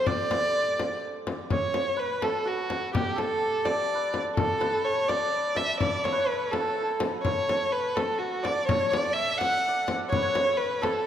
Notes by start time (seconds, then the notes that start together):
Already playing: G4 A4 C5
0.06 D5, frame drum
0.31 frame drum
0.79 frame drum
1.27 frame drum
1.50 C#5, frame drum
1.74 frame drum
1.97 B4
2.22 A4, frame drum
2.45 F#4
2.70 frame drum
2.93 G4, frame drum
3.16 A4, frame drum
3.65 D5, frame drum
3.95 B4
4.14 frame drum
4.37 A4, frame drum
4.60 B4, frame drum
4.85 C#5
5.08 D5, frame drum
5.55 E5, frame drum
5.80 D5, frame drum
6.04 C#5, frame drum
6.12 B4
6.19 C#5
6.27 B4
6.51 A4, frame drum
6.60 A4
6.68 A4
6.77 A4
6.82 A4
6.90 A4
7.00 frame drum
7.23 C#5, frame drum
7.49 frame drum
7.72 B4
7.95 A4, frame drum
8.18 F#4
8.43 D5, frame drum
8.67 C#5, frame drum
8.91 D5, frame drum
9.13 E5
9.38 F#5, frame drum
9.68 D5
9.88 frame drum
10.10 C#5, frame drum
10.16 B4
10.23 C#5
10.35 frame drum
10.57 B4
10.82 A4, frame drum